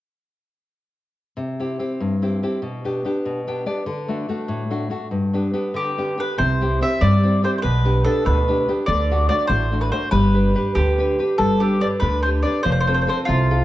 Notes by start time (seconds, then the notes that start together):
1.37 C3
1.60 C4 E4 G4
1.79 C4 E4 G4
2.00 G2
2.22 C4 E4 G4
2.43 C4 E4 G4
2.62 B2
2.84 B3 D4 G4
3.05 B3 D4 G4
3.25 B2
3.47 B3 D4 G4 G5
3.66 B3 D4 G4 D5
3.86 D3
4.08 A3 D4 F#4
4.29 A3 D4 F#4
4.48 A2
4.70 A3 D4 F#4
4.90 A3 D4 F#4
5.11 G2
5.33 B3 D4 G4
5.53 B3 D4 G4
5.74 D3 G4
5.98 B3 D4 G4
6.18 B3 D4 G4 B4
6.38 C2 C3 C5
6.61 C4 E4 G4
6.81 C4 E4 G4 E5
7.01 G2 G3 D5
7.23 C4 E4 G4
7.43 C4 E4 G4 C5
7.58 C5
7.62 B1 B2 B4
7.85 B3 D4 G4
8.04 B3 D4 G4 A4
8.25 D2 B2 B4
8.48 B3 D4 G4
8.68 B3 D4 G4
8.86 D2 D3 D5
9.11 A3 D4 F#4
9.29 A3 D4 F#4 D5
9.47 A1 A3 C5
9.72 A3 D4 F#4
9.81 B4
9.92 A3 D4 F#4 C5
10.11 G1 G3 B4
10.34 D4 G4 B4
10.54 D4 G4 B4
10.75 D2 D3 G4
10.98 D4 G4 B4
11.19 D4 G4 B4
11.38 G1 G3 A4
11.60 D4 G4 B4
11.80 D4 G4 B4 D5
12.00 D2 D3 B4
12.23 D4 G4 B4 C5
12.43 D4 G4 B4 D5
12.63 F1 F3 C5
12.72 C5
12.81 C5
12.87 C4 F4 A4 C5
12.94 C5
13.02 C5
13.07 C4 F4 A4 C5
13.25 C2 C3 F4
13.50 C4 F4 A4